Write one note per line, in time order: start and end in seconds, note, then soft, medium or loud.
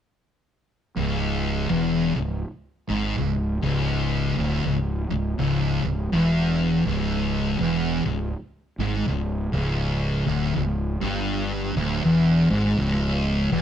0.97 1.66 C#1 medium
0.97 1.69 C#2 medium
1.70 2.12 E1 medium
1.70 2.14 E2 loud
2.16 2.42 C#1 medium
2.16 2.38 C#2 medium
2.89 3.15 G#1 medium
2.89 3.16 G#2 medium
3.18 3.60 C#1 medium
3.18 3.54 C#2 medium
3.62 4.32 C#1 loud
3.62 4.35 C#2 loud
4.38 4.63 D1 loud
4.38 4.64 D2 loud
4.65 5.07 C#1 medium
4.65 5.02 C#2 medium
5.11 5.37 C#1 medium
5.11 5.33 C#2 medium
5.38 5.81 C#1 loud
5.38 5.83 C#2 loud
5.84 6.10 C#1 medium
5.84 6.07 C#2 medium
6.12 6.82 E1 medium
6.12 6.85 E2 medium
6.86 7.56 C#1 medium
6.86 7.59 C#2 loud
7.60 8.02 E1 medium
7.60 8.04 E2 loud
8.05 8.32 C#1 medium
8.05 8.28 C#2 medium
8.78 9.05 G#1 medium
8.78 9.07 G#2 loud
9.07 9.50 C#1 medium
9.07 9.45 C#2 medium
9.53 10.24 C#1 medium
9.53 10.26 C#2 loud
10.27 10.54 D1 loud
10.27 10.55 D2 loud
10.56 10.99 C#1 medium
10.56 10.93 C#2 medium
11.01 11.72 G1 medium
11.01 11.75 G2 loud
11.76 12.02 D1 medium
11.76 12.04 D2 loud
12.04 12.47 E1 medium
12.04 12.49 E2 loud
12.50 12.77 G#1 medium
12.50 12.78 G#2 loud
12.78 13.49 C#1 medium
12.78 13.51 C#2 loud
13.52 13.62 E1 medium
13.52 13.62 E2 loud